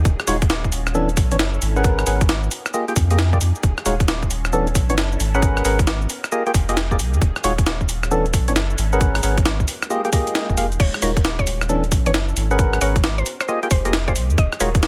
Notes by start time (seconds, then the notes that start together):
Already playing: G#4
0.05 D#1 C#4 F4 F#4, kick, closed hi-hat, shaker
0.20 cross-stick, shaker
0.27 D#1 G#3 D#4 F4 F#4 C#5, open hi-hat, shaker
0.42 kick, closed hi-hat, shaker
0.50 snare, closed hi-hat, shaker
0.64 kick, shaker
0.72 open hi-hat, shaker
0.87 cross-stick, shaker
0.95 E3 B3 C#4 D4 E4 A4, shaker
1.09 closed hi-hat, shaker
1.17 B1, kick, open hi-hat, shaker
1.31 F#1 E3 B3 C#4 D4 C#5, closed hi-hat, shaker
1.39 snare, closed hi-hat, shaker
1.54 shaker
1.62 G#1, open hi-hat, shaker
1.76 C#4 G#4 A#4 B4 F#5, shaker
1.84 B3 F#4 A#4, kick, closed hi-hat, shaker
1.99 cross-stick, shaker
2.07 G#1 C#4 G#4 A#4 B4 F#5, open hi-hat, shaker
2.21 kick, closed hi-hat, shaker
2.29 snare, closed hi-hat, shaker
2.43 shaker
2.51 A#3 D#4 G4 G#4, open hi-hat, shaker
2.66 cross-stick, shaker
2.74 A#3 F4 G4 G#4 D#5, shaker
2.88 A#3 F4 G4 G#4 G5, closed hi-hat, shaker
2.96 F2, kick, open hi-hat, shaker
3.11 A#3 F4 G4 G#4 D#5, closed hi-hat, shaker
3.19 snare, closed hi-hat, shaker
3.33 A#3 F4 G4 G#4 D5, kick, shaker
3.41 F2, open hi-hat, shaker
3.55 shaker
3.63 D#1 C#4 F4 F#4, kick, closed hi-hat, shaker
3.78 cross-stick, shaker
3.86 D#1 G#3 D#4 F4 F#4 C#5, open hi-hat, shaker
4.00 kick, closed hi-hat, shaker
4.08 snare, closed hi-hat, shaker
4.23 kick, shaker
4.31 open hi-hat, shaker
4.45 cross-stick, shaker
4.53 E3 B3 C#4 D4 E4 A4, shaker
4.67 closed hi-hat, shaker
4.75 B1, kick, open hi-hat, shaker
4.90 F#1 E3 B3 C#4 D4 C#5, closed hi-hat, shaker
4.98 snare, closed hi-hat, shaker
5.12 shaker
5.20 G#1, open hi-hat, shaker
5.34 C#4 G#4 A#4 B4 F#5, shaker
5.42 B3 F#4 A#4, kick, closed hi-hat, shaker
5.57 cross-stick, shaker
5.65 G#1 C#4 G#4 A#4 B4 F#5, open hi-hat, shaker
5.79 kick, closed hi-hat, shaker
5.87 snare, closed hi-hat, shaker
6.02 shaker
6.10 A#3 D#4 G4 G#4, open hi-hat, shaker
6.24 cross-stick, shaker
6.32 A#3 F4 G4 G#4 D#5, shaker
6.47 A#3 F4 G4 G#4 G5, closed hi-hat, shaker
6.54 F1, kick, open hi-hat, shaker
6.69 A#3 F4 G4 G#4 D#5, closed hi-hat, shaker
6.77 snare, closed hi-hat, shaker
6.91 A#3 F4 G4 G#4 D5, kick, shaker
6.99 C2, open hi-hat, shaker
7.14 F2, shaker
7.22 D#1 C#4 F4 F#4, kick, closed hi-hat, shaker
7.36 cross-stick, shaker
7.44 D#1 G#3 D#4 F4 F#4 C#5, open hi-hat, shaker
7.58 kick, closed hi-hat, shaker
7.66 snare, closed hi-hat, shaker
7.81 kick, shaker
7.89 open hi-hat, shaker
8.03 cross-stick, shaker
8.11 E3 B3 C#4 D4 E4 A4, shaker
8.26 closed hi-hat, shaker
8.34 B1, kick, open hi-hat, shaker
8.48 F#1 E3 B3 C#4 D4 C#5, closed hi-hat, shaker
8.56 snare, closed hi-hat, shaker
8.70 shaker
8.78 G#1, open hi-hat, shaker
8.93 C#4 G#4 A#4 B4 F#5, shaker
9.01 B3 F#4 A#4, kick, closed hi-hat, shaker
9.15 cross-stick, open hi-hat, shaker
9.23 G#1 C#4 G#4 A#4 B4 F#5, open hi-hat, shaker
9.38 kick, closed hi-hat, shaker
9.45 snare, closed hi-hat, shaker
9.60 kick, shaker
9.68 G#3 A#3 D#4 G5, open hi-hat, shaker
9.82 cross-stick, shaker
9.90 A#3 F4 G4 G#4 D#5, shaker
10.05 A#3 F4 G4 G#4 G5, closed hi-hat, shaker
10.13 A#3 F4 G4 G#4 D#5, kick, open hi-hat, shaker
10.27 closed hi-hat, shaker
10.35 snare, closed hi-hat, shaker
10.49 F1, kick, shaker
10.57 F1 A#3 F4 G4 G#4 F5, open hi-hat, shaker
10.72 D#1, closed hi-hat, shaker
10.80 D#1 C#4 F4 F#4 C#5, kick, closed hi-hat, crash, shaker
10.94 cross-stick, shaker
11.02 D#1 G#3 D#4 F4 F#4 A#4 C#5, open hi-hat, shaker
11.17 kick, closed hi-hat, shaker
11.25 snare, closed hi-hat, shaker
11.39 C#5, kick, shaker
11.47 open hi-hat, shaker
11.61 cross-stick, shaker
11.69 E3 B3 C#4 D4 E4 A4, shaker
11.84 closed hi-hat, shaker
11.92 B1, kick, open hi-hat, shaker
12.06 F#1 E3 B3 C#4 D4 C#5, closed hi-hat, shaker
12.14 snare, closed hi-hat, shaker
12.29 shaker
12.37 G#1, open hi-hat, shaker
12.51 C#4 G#4 A#4 B4 F#5, shaker
12.59 B3 F#4 A#4, kick, closed hi-hat, shaker
12.73 cross-stick, shaker
12.81 G#1 C#4 G#4 A#4 B4 C#5 F#5, open hi-hat, shaker
12.96 kick, closed hi-hat, shaker
13.04 snare, closed hi-hat, shaker
13.18 C5, shaker
13.26 A#3 D#4 G4 G#4, open hi-hat, shaker
13.41 C5, cross-stick, shaker
13.48 A#3 F4 G4 G#4 D#5, shaker
13.63 A#3 F4 G4 G#4 G5, closed hi-hat, shaker
13.71 F1 C5, kick, open hi-hat, shaker
13.85 A#3 F4 G4 G#4 D#5, closed hi-hat, shaker
13.93 snare, closed hi-hat, shaker
14.08 A#3 F4 G4 G#4 C5 D5, kick, shaker
14.16 C2, open hi-hat, shaker
14.30 F2, shaker
14.38 D#1 C#4 F4 F#4 G#4 D#5, kick, closed hi-hat, shaker
14.52 cross-stick, shaker
14.60 D#1 G#3 D#4 F4 F#4 A#4 C#5, open hi-hat, shaker
14.75 kick, closed hi-hat, shaker
14.83 snare, closed hi-hat, shaker